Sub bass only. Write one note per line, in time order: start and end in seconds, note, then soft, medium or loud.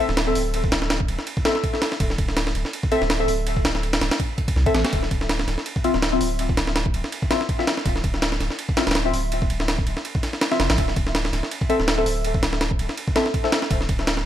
0.09 0.34 D1 loud
0.36 0.71 D1 medium
0.72 1.07 D1 medium
1.09 1.18 D1 medium
2.00 2.17 D1 loud
2.18 2.54 D1 medium
2.55 2.64 D1 medium
3.01 3.27 D1 loud
3.28 3.63 D1 medium
3.65 4.00 D1 medium
4.01 4.10 D1 medium
4.56 4.65 C2 medium
4.74 4.83 A1 loud
4.93 5.09 D1 loud
5.11 5.46 D1 medium
5.48 5.57 D1 medium
5.94 6.20 D1 loud
6.21 6.56 D1 medium
6.57 6.93 D1 medium
6.94 7.03 D1 medium
7.86 8.02 D1 loud
8.04 8.39 D1 medium
8.40 8.49 D1 medium
8.87 9.12 D1 loud
9.13 9.49 D1 medium
9.50 9.85 D1 medium
9.87 9.96 D1 medium
10.60 10.69 F1 loud
10.70 10.77 A1 medium
10.78 10.95 D1 loud
10.96 11.32 D1 medium
11.33 11.42 D1 medium
11.79 12.05 D1 loud
12.06 12.41 D1 medium
12.43 12.78 D1 medium
12.79 12.88 D1 medium
13.71 13.87 D1 loud
13.89 14.24 D1 medium